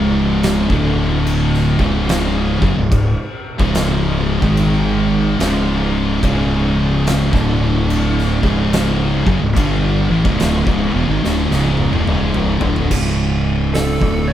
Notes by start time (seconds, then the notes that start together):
Already playing: C#1 C#2 G#2 C#3
0.43 snare, crash
0.69 D1 D2 A2 D3, kick
1.27 crash
1.54 snare
1.78 C#1 C#2 G#2 C#3, kick
2.09 snare, crash
2.60 F#1 F#2 C#3, kick
2.76 C#1 C#2 G#2
2.92 kick, crash
3.59 C#1 C#2 G#2 C#3, kick
3.75 snare, crash
4.42 G#1 G#2 D#3 G#3, kick
4.57 crash
5.39 C#1 C#2 G#2 C#3, snare, crash
6.23 C#1 C#2 G#2 C#3, kick, crash
7.07 snare, crash
7.31 D1 D2 A2 D3, kick, snare
7.90 crash
8.18 snare
8.42 C#1 C#2 G#2 C#3, kick
8.73 snare, crash
9.26 F#1 F#2 C#3, kick
9.41 C#1 C#2 G#2
9.55 G1 G2 D3 G3, kick, crash
10.10 A1 A2 E3
10.25 C#1 C#2 G#2, kick
10.39 D1 D2 A2, snare, crash
10.66 C#1 C#2 G#2, kick
10.93 E1 E2 B2
11.08 G#1 G#2 D#3
11.23 D1 D2 A2, snare
11.49 C#1 C#2 G#2 C#3, snare
11.77 high tom
11.92 D1 D2 A2, high tom
12.07 C#1 C#2 G#2 C#3, mid tom
12.34 mid tom
12.61 D1 D2 A2 D3, floor tom
12.76 floor tom
12.91 C#1 C#2 G#2 C#3, kick, crash
13.74 A4, snare, open hi-hat
14.01 D1 D2 A2 D3, kick
14.28 D5